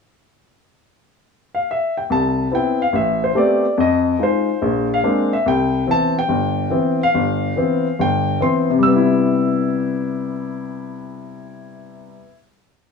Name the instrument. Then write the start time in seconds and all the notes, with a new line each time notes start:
grand piano
1.55 F5
1.71 E5
1.97 G5
2.10 C2 A5
2.52 B3 C4 E4 G5
2.82 F5
2.93 A1 E5
3.24 C5
3.35 A3 B3 C4 G4 D5
3.78 F2 D#5
4.19 G#3 D#4 F4
4.23 C5
4.62 A#1
4.94 F5
5.03 G#3 A#3 C4 D4
5.33 E5
5.46 C2 G5
5.87 E3 B3 C4
5.91 A5
6.19 G5
6.29 G1
6.70 E3 B3 C4
7.03 F5
7.14 G1
7.56 E3 B3 C4
7.99 G1 G5
8.40 E3 B3 C4 C6
8.70 C3
8.79 G3
8.83 E6
8.87 B3
8.96 E4